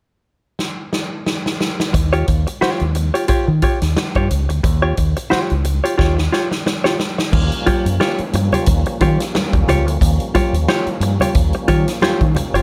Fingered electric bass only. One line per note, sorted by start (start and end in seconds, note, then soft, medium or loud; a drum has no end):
1.94 2.22 D#2 loud
2.28 2.44 D#2 medium
2.62 muted fingered electric bass stroke soft
2.81 3.09 D#2 medium
3.29 muted fingered electric bass stroke soft
3.48 3.60 D#3 medium
3.82 3.94 D#2 medium
4.16 4.28 G2 medium
4.31 4.47 C#2 medium
4.50 4.62 D2 medium
4.64 4.92 D#2 loud
4.98 5.14 D#2 medium
5.32 muted fingered electric bass stroke soft
5.51 5.79 C#2 medium
5.99 6.27 D#2 medium
7.33 7.49 D#2 loud
7.85 7.98 F#2 medium
8.19 muted fingered electric bass stroke soft
8.33 8.49 G2 medium
8.67 8.83 D#2 medium
9.00 9.16 D#3 medium
9.53 9.65 D#2 medium
9.68 9.86 C#2 medium
9.86 9.99 D2 medium
10.01 10.17 D#2 loud
10.53 10.66 D#2 medium
10.87 muted fingered electric bass stroke soft
11.00 11.17 G2 medium
11.35 11.51 D#2 medium
11.68 11.84 D#3 loud
12.21 12.33 D#3 medium
12.53 12.62 G1 medium